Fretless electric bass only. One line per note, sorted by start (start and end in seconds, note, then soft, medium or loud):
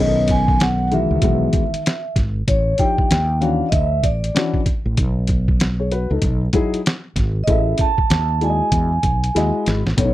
0.00 1.06 B1 medium
1.11 1.21 C#2 medium
1.22 1.47 B1 medium
2.16 2.41 G#1 medium
2.48 2.73 A1 loud
3.11 3.61 D#2 medium
3.72 4.04 D2 loud
4.04 4.29 A1 medium
4.86 4.95 A1 medium
4.98 6.06 B1 medium
6.11 6.21 C#2 medium
6.22 6.47 B1 medium
7.16 7.41 G#1 medium
7.48 7.73 A1 loud
8.10 8.60 D#2 medium
8.72 8.97 E2 loud
9.03 9.29 B1 medium
9.36 9.51 D#2 medium
9.67 9.82 G#1 medium
9.86 9.96 A1 medium
9.98 10.14 B1 medium